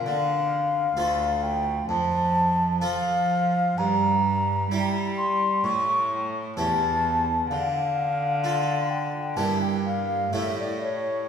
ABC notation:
X:1
M:4/4
L:1/16
Q:1/4=64
K:Dm
V:1 name="Flute"
f6 g2 a4 f4 | b6 c'2 ^c'3 z a4 | f6 g2 a g f2 e d ^c2 |]
V:2 name="Harpsichord"
z4 [FA]4 z4 [FA]4 | z4 [EG]4 z4 [EG]4 | z4 [FA]4 [B,EG]4 [A,EG]4 |]
V:3 name="Harpsichord" clef=bass
D,4 D,,4 F,,4 F,4 | G,,4 G,4 A,,4 E,,4 | D,8 G,,4 A,,4 |]
V:4 name="Cello" clef=bass
D,4 D,,4 F,,4 F,4 | G,,4 G,4 A,,4 E,,4 | D,8 G,,4 A,,4 |]